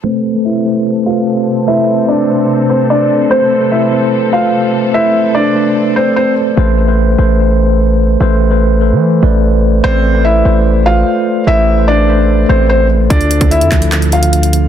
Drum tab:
HH |----------------|----------------|----------------|----------------|
CP |----------------|----------------|----------------|----------------|
BD |----------------|----------------|----------------|----------------|

HH |----------------|----------------|----------------|----------------|
CP |----------------|----------------|----------------|----------------|
BD |----------------|----------------|----------------|----------------|

HH |xxxxxxxxxxxxxxx-|
CP |------x-x-------|
BD |o--o--o---------|